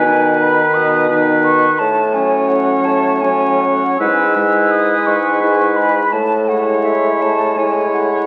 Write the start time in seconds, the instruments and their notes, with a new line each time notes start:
Already playing: bassoon B2, flute G#5
0.05 french horn D#3, clarinet D#4, oboe B4
0.41 flute B5
0.74 bassoon B2, flute D#6
1.09 french horn D#3, clarinet D#4, oboe B4
1.44 flute C#6
1.79 bassoon A2, flute A5
2.13 french horn F#3, clarinet C#4, oboe C#5, flute G#5
2.48 flute F#5
2.85 bassoon A2, flute A5
3.21 french horn F#3, clarinet C#4, oboe C#5, flute G#5
3.61 flute F#5
3.99 bassoon G#2, french horn G#3, clarinet E4, oboe B4, flute E6
4.35 french horn G#3, clarinet E4, oboe B4
4.71 flute D#6
5.07 bassoon G#2, flute C#6
5.41 french horn G#3, clarinet E4, oboe B4
5.76 flute B5
6.12 bassoon A2, flute A5
6.48 french horn G#3, clarinet E4, oboe C#5, flute F#5
6.84 flute E5
7.22 bassoon A2, flute A5
7.57 french horn G#3, clarinet E4, oboe C#5, flute G#5
7.93 flute F#5